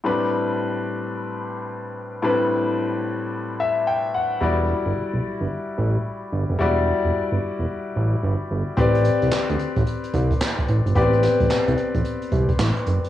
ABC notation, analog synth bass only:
X:1
M:4/4
L:1/16
Q:"Swing 16ths" 1/4=110
K:Ador
V:1 name="Analog synth bass" clef=bass
z16 | z16 | E,,,3 G,,, B,,, B,,, z G,,, z2 A,,,2 z2 G,,, F,,, | E,,,3 E,,, G,,, G,,, z E,,, z2 A,,,2 G,,, z G,,, z |
A,,,3 C,, D,, D,, z A,,, z2 C,,2 z2 A,,, G,,, | A,,,3 A,,, C,, C,, z A,,, z2 C,,2 A,,, z F,,, z |]